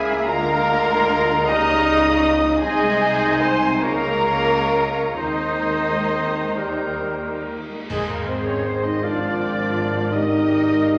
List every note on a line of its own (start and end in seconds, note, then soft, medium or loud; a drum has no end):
0.00 0.25 C#2 medium
0.00 0.25 C#3 medium
0.00 0.10 G#3 medium
0.00 0.29 G#3 loud
0.00 0.30 A#3 medium
0.00 0.10 E4 medium
0.00 0.27 E4 medium
0.00 0.25 G#4 loud
0.00 0.28 G#4 medium
0.00 0.25 A#4 medium
0.00 0.25 E5 loud
0.00 0.28 G#5 loud
0.10 0.28 A#3 medium
0.10 0.29 C#4 medium
0.27 1.49 D2 medium
0.27 1.50 D3 loud
0.27 1.49 G#3 medium
0.27 1.49 A#3 loud
0.27 0.47 A#3 medium
0.27 1.50 F4 loud
0.27 0.47 F4 medium
0.27 1.46 A#4 loud
0.27 1.50 A#4 loud
0.27 1.47 A#4 medium
0.27 1.49 F5 loud
0.27 1.46 A#5 loud
0.48 0.68 G#3 medium
0.48 0.68 D4 medium
0.68 0.89 A#3 medium
0.68 0.89 F4 medium
0.88 1.09 G#3 medium
0.88 1.09 D4 medium
1.10 1.29 A#3 medium
1.10 1.29 F4 medium
1.30 1.49 G#3 medium
1.30 1.49 D4 medium
1.48 2.62 C#2 loud
1.48 2.62 C#3 loud
1.48 2.32 G3 medium
1.48 1.67 A#3 medium
1.48 2.59 D#4 loud
1.48 2.34 D#4 loud
1.48 1.67 D#4 medium
1.48 2.32 A#4 loud
1.48 2.33 D#5 loud
1.48 2.62 D#5 loud
1.48 2.37 A#5 loud
1.48 2.62 D#6 loud
1.69 1.87 G3 medium
1.69 1.87 C#4 medium
1.87 2.05 A#3 medium
1.87 2.05 D#4 medium
2.05 2.24 G3 medium
2.05 2.24 C#4 medium
2.24 2.42 A#3 medium
2.24 2.42 D#4 medium
2.43 2.62 G3 medium
2.43 2.62 C#4 medium
2.61 3.83 C2 loud
2.61 3.83 C3 medium
2.61 3.79 G#3 loud
2.61 3.42 G#3 loud
2.61 2.80 C4 loud
2.61 3.85 D#4 loud
2.61 2.80 D#4 medium
2.61 3.39 G#4 loud
2.61 3.43 G#4 loud
2.61 3.85 C5 loud
2.61 3.40 D#5 loud
2.61 3.40 G#5 loud
2.81 3.01 G#3 medium
2.81 2.99 C4 medium
3.00 3.20 C4 medium
3.00 3.21 D#4 medium
3.21 3.41 G#3 medium
3.21 3.40 C4 medium
3.41 3.83 C4 loud
3.41 3.61 C4 medium
3.41 3.61 D#4 medium
3.41 3.83 C5 loud
3.41 3.85 C5 medium
3.41 3.83 G#5 loud
3.41 3.83 C6 loud
3.62 3.83 G#3 medium
3.62 3.83 C4 medium
3.82 5.18 C#2 medium
3.82 5.18 C#3 medium
3.82 5.15 G#3 medium
3.82 4.03 A#3 medium
3.82 5.02 A#3 loud
3.82 4.03 C#4 medium
3.82 5.18 F4 medium
3.82 5.18 A#4 loud
3.82 5.17 C#5 medium
3.82 5.18 F5 medium
3.82 5.17 A#5 loud
4.05 4.26 G#3 medium
4.05 4.25 A#3 medium
4.26 4.47 A#3 medium
4.26 4.48 C#4 medium
4.49 4.71 G#3 medium
4.49 4.70 A#3 medium
4.71 4.93 A#3 medium
4.71 4.93 C#4 medium
4.95 5.18 G#3 medium
4.95 5.18 A#3 medium
5.16 7.64 D#2 medium
5.16 7.64 D#3 medium
5.16 7.43 D#3 medium
5.16 6.59 G#3 medium
5.16 5.40 C4 medium
5.16 7.46 D#4 loud
5.16 7.43 D#4 medium
5.16 6.54 D#4 medium
5.16 7.42 C5 medium
5.16 6.53 C5 medium
5.16 7.46 D#5 loud
5.41 5.65 G#3 medium
5.41 5.65 D#4 medium
5.64 5.88 C4 medium
5.88 6.11 G#3 medium
5.88 6.11 D#4 medium
6.10 6.32 C4 medium
6.34 6.56 G#3 medium
6.34 6.56 D#4 medium
6.56 7.54 G3 medium
6.56 6.77 A#3 medium
6.56 7.51 D#4 medium
6.56 7.52 A#4 medium
6.78 7.01 G3 medium
6.78 7.01 D#4 medium
7.00 7.23 A#3 medium
7.23 7.46 G3 medium
7.23 7.46 D#4 medium
7.46 7.67 A#3 medium
7.69 7.89 G3 medium
7.69 7.89 D#4 medium
7.88 10.98 G#1 medium
7.88 10.98 G#2 medium
7.88 9.04 D#3 medium
7.88 8.07 G#3 medium
7.88 9.05 G#4 medium
7.88 8.07 G#4 medium
7.88 8.99 G#4 medium
7.88 8.07 G#4 medium
7.88 10.08 C5 medium
7.88 9.05 C5 medium
7.88 8.99 D#5 medium
7.88 concert bass drum medium
7.88 crash medium
8.08 8.27 A#3 medium
8.08 8.27 A#4 medium
8.26 8.46 C4 medium
8.26 8.45 C5 medium
8.26 8.46 C5 medium
8.46 8.66 C#4 medium
8.46 8.65 C#5 medium
8.65 8.84 C4 medium
8.65 8.84 C5 medium
8.84 9.03 D#4 medium
8.84 9.03 D#5 medium
9.02 10.14 F3 medium
9.02 10.09 D4 medium
9.02 10.12 F4 medium
9.02 10.98 A#4 medium
9.02 10.11 D5 medium
9.02 10.12 D5 medium
9.02 9.39 F5 medium
9.02 10.11 F5 medium
9.40 9.76 G5 medium
9.75 10.12 F5 medium
10.10 10.98 G3 medium
10.10 10.98 D#4 loud
10.10 10.98 G4 medium
10.10 10.98 A#4 medium
10.10 10.88 D#5 medium
10.10 10.98 D#5 medium
10.10 10.47 D#5 medium
10.10 10.98 D#5 medium
10.48 10.83 G5 medium
10.82 10.98 F5 medium